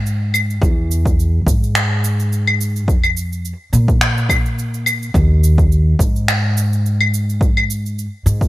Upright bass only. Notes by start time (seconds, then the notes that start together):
Already playing: G#2
0.62 E2
1.46 G#2
2.88 F2
3.73 A#2
5.15 D#2
5.99 G#2
8.26 G#2